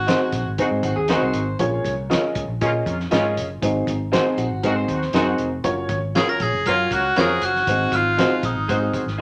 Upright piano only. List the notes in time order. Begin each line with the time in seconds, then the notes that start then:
Already playing: G#2
0.07 C4 D#4 F#4 G#4 C5
0.58 C4 D#4 F#4 G#4 C5
1.09 C4 D#4 F#4 G#4 A#4
1.59 A#2 C#4 F4 G#4 A#4 C#5
2.10 C#4 F4 G#4 A#4 D#5
2.61 C#4 F4 G#4 A#4 D#5
3.11 C#4 F4 G#4 A#4 D#5
3.62 G#2 C4 D#4 F#4 G#4 C5
4.12 C4 D#4 F#4 G#4 C5
4.63 C4 D#4 F#4 G#4 C5
5.14 C4 D#4 F#4 G#4 A#4
5.64 C#4 F4 F#4 A#4 C#5
6.16 C#4 F4 F#4 A#4 C#5
6.67 C#4 F4 F#4 A#4 C#5
7.16 C#4 F4 F#4 A#4 C5
7.68 G#2 C4 D#4 F#4 G#4 C5
8.18 C4 D#4 F#4 G#4 C5
8.69 C4 D#4 F#4 G#4 C5